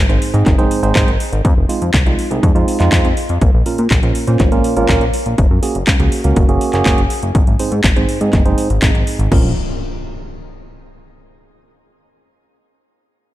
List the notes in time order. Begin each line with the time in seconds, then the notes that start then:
0.09 G#1 G#2 C4 D#4 G#4 C5, closed hi-hat
0.22 open hi-hat
0.34 G#2 C4 D#4 G#4 D#5, closed hi-hat
0.46 F#1, kick, clap, closed hi-hat
0.58 F#1 G#2 C4 D#4 G#4 C5, closed hi-hat
0.71 open hi-hat
0.83 G#1 G#2 C4 D#4 G#4 C5, closed hi-hat
0.95 G#1 G#2 C4 D#4 G#4 C5, kick, clap, closed hi-hat
1.08 G#1, closed hi-hat
1.20 open hi-hat
1.33 G#1, closed hi-hat
1.45 F2, kick, closed hi-hat
1.57 F1
1.69 G#3 C4 D#4 F4, open hi-hat
1.82 F2, closed hi-hat
1.94 C2, kick, clap, closed hi-hat
2.06 C2 G#3 C4 D#4 F4, closed hi-hat
2.19 open hi-hat
2.31 C2 G#3 C4 D#4 G#4, closed hi-hat
2.43 F2, kick, closed hi-hat
2.55 F2 G#3 C4 D#4 F4, closed hi-hat
2.68 open hi-hat
2.80 F2 G#3 C4 D#4 F4, clap, closed hi-hat
2.92 F2 G#3 C4 D#4 F4, kick, clap, closed hi-hat
3.05 F2, closed hi-hat
3.17 open hi-hat
3.29 F2, closed hi-hat
3.41 A#1, kick, closed hi-hat
3.54 A#1
3.66 A#2 A#3 C#4 F4 A#4, open hi-hat
3.78 A#2, closed hi-hat
3.91 A#1, kick, clap, closed hi-hat
4.03 A#1 A#2 A#3 C#4 F4 A#4, closed hi-hat
4.15 open hi-hat
4.27 A#2 A#3 C#4 F4 C5, closed hi-hat
4.40 G#1, kick, clap, closed hi-hat
4.52 G#1 A#2 A#3 C#4 F4 A#4, closed hi-hat
4.64 open hi-hat
4.77 G#1 A#2 A#3 C#4 F4 A#4, closed hi-hat
4.89 A#1 A#2 A#3 C#4 F4 A#4, kick, clap, closed hi-hat
5.01 A#1, closed hi-hat
5.14 open hi-hat
5.26 A#1, closed hi-hat
5.38 F#1, kick, closed hi-hat
5.51 F#2
5.63 A#3 C#4 F#4 G#4, open hi-hat
5.75 F#1, closed hi-hat
5.87 C#2, kick, clap, closed hi-hat
6.00 C#2 A#3 C#4 F#4 G#4, closed hi-hat
6.12 open hi-hat
6.24 C#2 A#3 C#4 F#4 A#4, closed hi-hat
6.36 F#1, kick, closed hi-hat
6.49 F#1 A#3 C#4 F#4 G#4, closed hi-hat
6.61 open hi-hat
6.73 F#1 A#3 C#4 F#4 G#4, clap, closed hi-hat
6.86 F#1 A#3 C#4 F#4 G#4, kick, clap, closed hi-hat
6.98 F#1, closed hi-hat
7.10 open hi-hat
7.23 F#1, closed hi-hat
7.35 G#1, kick, closed hi-hat
7.47 G#1, closed hi-hat
7.59 G#2 C4 D#4 G#4 C5, open hi-hat
7.72 G#2, closed hi-hat
7.84 G#1, kick, clap, closed hi-hat
7.96 G#1 G#2 C4 D#4 G#4 C5, closed hi-hat
8.09 open hi-hat
8.21 G#2 C4 D#4 G#4 D#5, closed hi-hat
8.33 F#1, kick, clap, closed hi-hat
8.45 F#1 G#2 C4 D#4 G#4 C5, closed hi-hat
8.58 open hi-hat
8.70 G#1, closed hi-hat
8.82 G#1 G#2 C4 D#4 G#4 D#5, kick, clap, closed hi-hat
8.95 G#1, closed hi-hat
9.07 open hi-hat
9.19 G#1, closed hi-hat
9.32 A#1 A#3 C#4 F4 A#4, kick, crash, impact